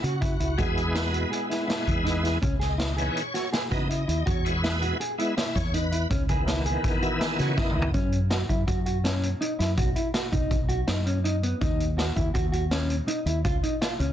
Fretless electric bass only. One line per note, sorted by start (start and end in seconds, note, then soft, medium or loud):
0.03 0.36 C#3 medium
0.40 0.56 C#2 medium
0.59 1.24 E2 medium
1.88 2.36 E2 medium
2.43 3.08 C#2 medium
3.72 4.04 C#3 medium
4.08 4.24 D#2 medium
4.27 4.92 E2 medium
5.56 6.04 E2 loud
6.11 6.75 C#2 medium
7.39 7.72 C#3 medium
7.76 7.92 C#2 medium
7.94 8.43 F#2 medium
8.50 8.66 F#2 medium
8.68 9.33 F#2 loud
9.60 9.76 F#2 medium
9.78 9.94 B1 medium
10.33 10.49 B1 medium
10.51 10.83 B1 loud
10.88 11.53 F#2 medium
11.62 12.10 D#2 medium
12.17 12.33 D#2 loud
12.35 12.99 D#2 loud
13.26 13.42 D#2 medium
13.45 13.61 C#2 medium
14.00 14.13 C#2 medium